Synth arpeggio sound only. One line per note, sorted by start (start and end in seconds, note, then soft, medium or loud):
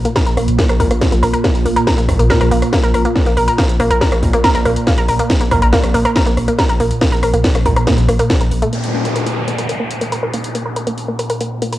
0.05 0.14 A#3 medium
0.16 0.19 A#4 medium
0.26 0.32 A#4 medium
0.37 0.41 A#3 medium
0.58 0.68 A#3 medium
0.69 0.73 A#4 medium
0.80 0.86 A#4 medium
0.91 0.94 A#3 medium
1.12 1.21 A#3 medium
1.23 1.26 A#4 medium
1.33 1.40 A#4 medium
1.44 1.48 A#3 medium
1.66 1.75 A#3 medium
1.76 1.80 A#4 medium
1.87 1.93 A#4 medium
1.98 2.01 A#3 medium
2.19 2.25 A#3 medium
2.30 2.34 A#4 medium
2.41 2.47 A#4 medium
2.51 2.55 A#3 medium
2.73 2.79 A#3 medium
2.83 2.87 A#4 medium
2.94 3.00 A#4 medium
3.05 3.09 A#3 medium
3.26 3.32 A#3 medium
3.37 3.41 A#4 medium
3.48 3.54 A#4 medium
3.58 3.62 A#3 medium
3.80 3.86 A#3 medium
3.91 3.94 A#4 medium
4.01 4.08 A#4 medium
4.12 4.16 A#3 medium
4.34 4.40 A#3 medium
4.44 4.48 A#4 medium
4.55 4.61 A#4 medium
4.66 4.69 A#3 medium
4.87 4.93 A#3 medium
4.98 5.02 A#4 medium
5.09 5.15 A#4 medium
5.19 5.23 A#3 medium
5.41 5.47 A#3 medium
5.51 5.55 A#4 medium
5.62 5.68 A#4 medium
5.73 5.77 A#3 medium
5.94 6.00 A#3 medium
6.05 6.09 A#4 medium
6.16 6.22 A#4 medium
6.26 6.30 A#3 medium
6.48 6.54 A#3 medium
6.59 6.62 A#4 medium
6.69 6.75 A#4 medium
6.80 6.84 A#3 medium
7.01 7.08 A#3 medium
7.12 7.16 A#4 medium
7.23 7.29 A#4 medium
7.34 7.37 A#3 medium
7.55 7.61 A#3 medium
7.66 7.69 A#4 medium
7.77 7.83 A#4 medium
7.87 7.91 A#3 medium
8.09 8.12 A#3 medium
8.19 8.25 A#3 loud
8.30 8.36 A#3 medium
8.41 8.44 A#4 medium
8.62 8.71 A3 loud
8.73 8.76 A#3 medium
8.94 9.00 A#3 medium
9.05 9.09 A#4 medium
9.16 9.22 A#4 medium
9.26 9.30 A#3 medium
9.48 9.54 A#3 medium
9.58 9.62 A#4 medium
9.69 9.75 A#4 medium
9.80 9.84 A#3 medium
10.01 10.07 A#3 medium
10.12 10.16 A#4 medium
10.23 10.29 A#4 medium
10.33 10.37 A#3 medium
10.55 10.61 A#3 medium
10.65 10.69 A#4 medium
10.76 10.82 A#4 medium
10.87 10.91 A#3 medium
11.08 11.15 A#3 medium
11.19 11.23 A#4 medium
11.30 11.36 A#4 medium
11.41 11.44 A#3 medium
11.62 11.68 A#3 medium
11.73 11.76 A#4 medium